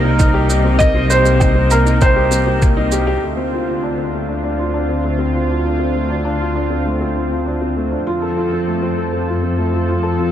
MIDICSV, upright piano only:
0, 0, Header, 1, 2, 480
1, 0, Start_track
1, 0, Tempo, 606061
1, 634, Time_signature, 4, 2, 24, 8
1, 8171, End_track
2, 0, Start_track
2, 0, Title_t, "Upright piano"
2, 0, Program_c, 0, 0
2, 0, Control_c, 0, 64, 127
2, 0, Note_on_c, 0, 58, 70
2, 0, Note_on_c, 0, 60, 73
2, 0, Note_on_c, 0, 63, 80
2, 0, Note_on_c, 0, 67, 72
2, 30, Note_off_c, 0, 63, 0
2, 30, Note_on_c, 0, 63, 67
2, 139, Note_off_c, 0, 63, 0
2, 151, Note_on_c, 0, 63, 102
2, 267, Note_off_c, 0, 63, 0
2, 269, Note_off_c, 0, 67, 0
2, 269, Note_on_c, 0, 67, 100
2, 385, Note_off_c, 0, 67, 0
2, 390, Note_on_c, 0, 63, 89
2, 506, Note_off_c, 0, 63, 0
2, 510, Note_off_c, 0, 60, 0
2, 510, Note_on_c, 0, 60, 75
2, 626, Note_off_c, 0, 60, 0
2, 627, Note_off_c, 0, 58, 0
2, 627, Note_on_c, 0, 58, 79
2, 745, Note_off_c, 0, 58, 0
2, 750, Note_on_c, 0, 60, 97
2, 866, Note_off_c, 0, 60, 0
2, 870, Note_on_c, 0, 67, 72
2, 980, Note_off_c, 0, 67, 0
2, 992, Note_on_c, 0, 67, 74
2, 1107, Note_off_c, 0, 67, 0
2, 1112, Note_on_c, 0, 63, 81
2, 1227, Note_off_c, 0, 63, 0
2, 1230, Note_on_c, 0, 60, 72
2, 1346, Note_off_c, 0, 60, 0
2, 1351, Note_on_c, 0, 58, 74
2, 1421, Note_off_c, 0, 58, 0
2, 1470, Note_on_c, 0, 63, 75
2, 1580, Note_off_c, 0, 63, 0
2, 1592, Note_on_c, 0, 63, 92
2, 1707, Note_off_c, 0, 63, 0
2, 1711, Note_on_c, 0, 67, 89
2, 1827, Note_off_c, 0, 67, 0
2, 1831, Note_on_c, 0, 60, 74
2, 1938, Note_off_c, 0, 60, 0
2, 1950, Note_on_c, 0, 60, 67
2, 2066, Note_off_c, 0, 60, 0
2, 2074, Note_on_c, 0, 58, 80
2, 2188, Note_off_c, 0, 58, 0
2, 2193, Note_on_c, 0, 63, 100
2, 2307, Note_off_c, 0, 63, 0
2, 2313, Note_on_c, 0, 67, 93
2, 2419, Note_off_c, 0, 67, 0
2, 2430, Note_on_c, 0, 67, 97
2, 2501, Note_off_c, 0, 67, 0
2, 2552, Note_on_c, 0, 57, 67
2, 2565, Control_c, 0, 64, 0
2, 2667, Note_off_c, 0, 57, 0
2, 2669, Note_on_c, 0, 60, 74
2, 2720, Control_c, 0, 64, 127
2, 2786, Note_off_c, 0, 60, 0
2, 2792, Note_on_c, 0, 65, 54
2, 2901, Note_off_c, 0, 65, 0
2, 2913, Note_on_c, 0, 65, 61
2, 3028, Note_off_c, 0, 65, 0
2, 3033, Note_on_c, 0, 62, 65
2, 3148, Note_off_c, 0, 62, 0
2, 3152, Note_on_c, 0, 60, 55
2, 3267, Note_off_c, 0, 60, 0
2, 3275, Note_on_c, 0, 57, 59
2, 3343, Note_off_c, 0, 57, 0
2, 3393, Note_on_c, 0, 62, 57
2, 3503, Note_off_c, 0, 62, 0
2, 3515, Note_on_c, 0, 62, 74
2, 3629, Note_off_c, 0, 62, 0
2, 3635, Note_on_c, 0, 65, 72
2, 3749, Note_off_c, 0, 65, 0
2, 3753, Note_on_c, 0, 62, 76
2, 3868, Note_off_c, 0, 62, 0
2, 3873, Note_on_c, 0, 60, 58
2, 3988, Note_off_c, 0, 60, 0
2, 3991, Note_on_c, 0, 57, 61
2, 4106, Note_off_c, 0, 57, 0
2, 4109, Note_on_c, 0, 60, 77
2, 4225, Note_off_c, 0, 60, 0
2, 4231, Note_on_c, 0, 65, 57
2, 4342, Note_off_c, 0, 65, 0
2, 4353, Note_on_c, 0, 65, 56
2, 4468, Note_off_c, 0, 65, 0
2, 4473, Note_on_c, 0, 62, 64
2, 4587, Note_off_c, 0, 62, 0
2, 4589, Note_on_c, 0, 60, 55
2, 4706, Note_off_c, 0, 60, 0
2, 4710, Note_on_c, 0, 57, 58
2, 4781, Note_off_c, 0, 57, 0
2, 4831, Note_on_c, 0, 62, 63
2, 4937, Note_off_c, 0, 62, 0
2, 4949, Note_on_c, 0, 62, 82
2, 5066, Note_off_c, 0, 62, 0
2, 5069, Note_on_c, 0, 65, 74
2, 5186, Note_off_c, 0, 65, 0
2, 5189, Note_on_c, 0, 62, 77
2, 5306, Note_off_c, 0, 62, 0
2, 5308, Note_on_c, 0, 60, 61
2, 5425, Note_off_c, 0, 60, 0
2, 5429, Note_on_c, 0, 57, 63
2, 5546, Note_off_c, 0, 57, 0
2, 5550, Note_on_c, 0, 60, 77
2, 5666, Note_off_c, 0, 60, 0
2, 5670, Note_on_c, 0, 65, 57
2, 5777, Note_off_c, 0, 65, 0
2, 5789, Note_on_c, 0, 65, 57
2, 5906, Note_off_c, 0, 65, 0
2, 5909, Note_on_c, 0, 62, 61
2, 6026, Note_off_c, 0, 62, 0
2, 6033, Note_on_c, 0, 60, 59
2, 6148, Note_off_c, 0, 60, 0
2, 6149, Note_on_c, 0, 57, 58
2, 6220, Note_off_c, 0, 57, 0
2, 6269, Note_on_c, 0, 62, 56
2, 6386, Note_off_c, 0, 62, 0
2, 6390, Note_on_c, 0, 65, 84
2, 6403, Control_c, 0, 64, 0
2, 6506, Note_off_c, 0, 65, 0
2, 6511, Note_on_c, 0, 69, 76
2, 6529, Control_c, 0, 64, 127
2, 6627, Note_off_c, 0, 69, 0
2, 6629, Note_on_c, 0, 65, 77
2, 6746, Note_off_c, 0, 65, 0
2, 6751, Note_on_c, 0, 60, 59
2, 6867, Note_off_c, 0, 60, 0
2, 6869, Note_on_c, 0, 57, 65
2, 6986, Note_off_c, 0, 57, 0
2, 6988, Note_on_c, 0, 60, 78
2, 7105, Note_off_c, 0, 60, 0
2, 7108, Note_on_c, 0, 69, 59
2, 7215, Note_off_c, 0, 69, 0
2, 7227, Note_on_c, 0, 69, 57
2, 7344, Note_off_c, 0, 69, 0
2, 7347, Note_on_c, 0, 65, 61
2, 7464, Note_off_c, 0, 65, 0
2, 7470, Note_on_c, 0, 60, 54
2, 7586, Note_off_c, 0, 60, 0
2, 7587, Note_on_c, 0, 57, 60
2, 7659, Note_off_c, 0, 57, 0
2, 7709, Note_on_c, 0, 65, 55
2, 7816, Note_off_c, 0, 65, 0
2, 7828, Note_on_c, 0, 65, 80
2, 7944, Note_on_c, 0, 69, 77
2, 7945, Note_off_c, 0, 65, 0
2, 8063, Note_off_c, 0, 69, 0
2, 8063, Note_on_c, 0, 65, 74
2, 8171, Note_off_c, 0, 65, 0
2, 8171, End_track
0, 0, End_of_file